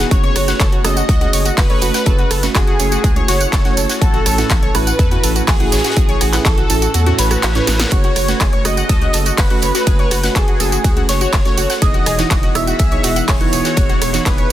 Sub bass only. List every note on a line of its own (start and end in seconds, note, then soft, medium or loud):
0.11 0.29 F#1 loud
0.36 0.54 F#1 medium
0.60 0.78 F#1 loud
0.84 1.02 F#1 loud
1.09 1.27 C#2 medium
1.33 1.51 F#1 loud
1.58 1.75 F#1 medium
1.82 1.91 F#1 medium
2.06 2.24 F#1 loud
2.31 2.49 F#1 loud
2.55 2.73 F#1 loud
2.80 2.97 F#1 medium
3.04 3.22 C#2 medium
3.28 3.46 F#1 loud
3.53 3.71 F#1 medium
3.77 3.86 F#1 medium
4.02 4.19 A1 loud
4.26 4.44 A1 loud
4.50 4.68 A1 loud
4.75 4.93 A1 medium
4.99 5.17 E2 medium
5.24 5.41 A1 loud
5.48 5.66 A1 medium
5.72 5.81 A1 medium
5.97 6.15 A1 loud
6.21 6.39 A1 medium
6.46 6.63 A1 loud
6.70 6.88 A1 medium
6.94 7.12 E2 medium
7.19 7.37 A1 loud
7.43 7.61 A1 loud
7.68 7.85 A1 loud
7.92 8.10 F#1 loud
8.16 8.34 F#1 medium
8.41 8.58 F#1 loud
8.65 8.83 F#1 medium
8.89 9.07 C#2 medium
9.14 9.32 F#1 loud
9.38 9.56 F#1 medium
9.63 9.72 F#1 medium
9.87 10.05 F#1 loud
10.11 10.29 F#1 medium
10.36 10.54 F#1 loud
10.60 10.78 F#1 loud
10.84 11.02 C#2 medium
11.09 11.27 F#1 loud
11.33 11.51 F#1 medium
11.58 11.67 F#1 medium
11.82 12.00 E1 loud
12.07 12.24 E1 medium
12.31 12.49 E1 loud
12.55 12.73 E1 medium
12.80 12.97 B1 medium
13.04 13.22 E1 loud
13.28 13.46 E1 medium
13.53 13.62 E1 medium
13.77 13.95 E1 loud
14.02 14.19 E1 loud
14.26 14.44 E1 loud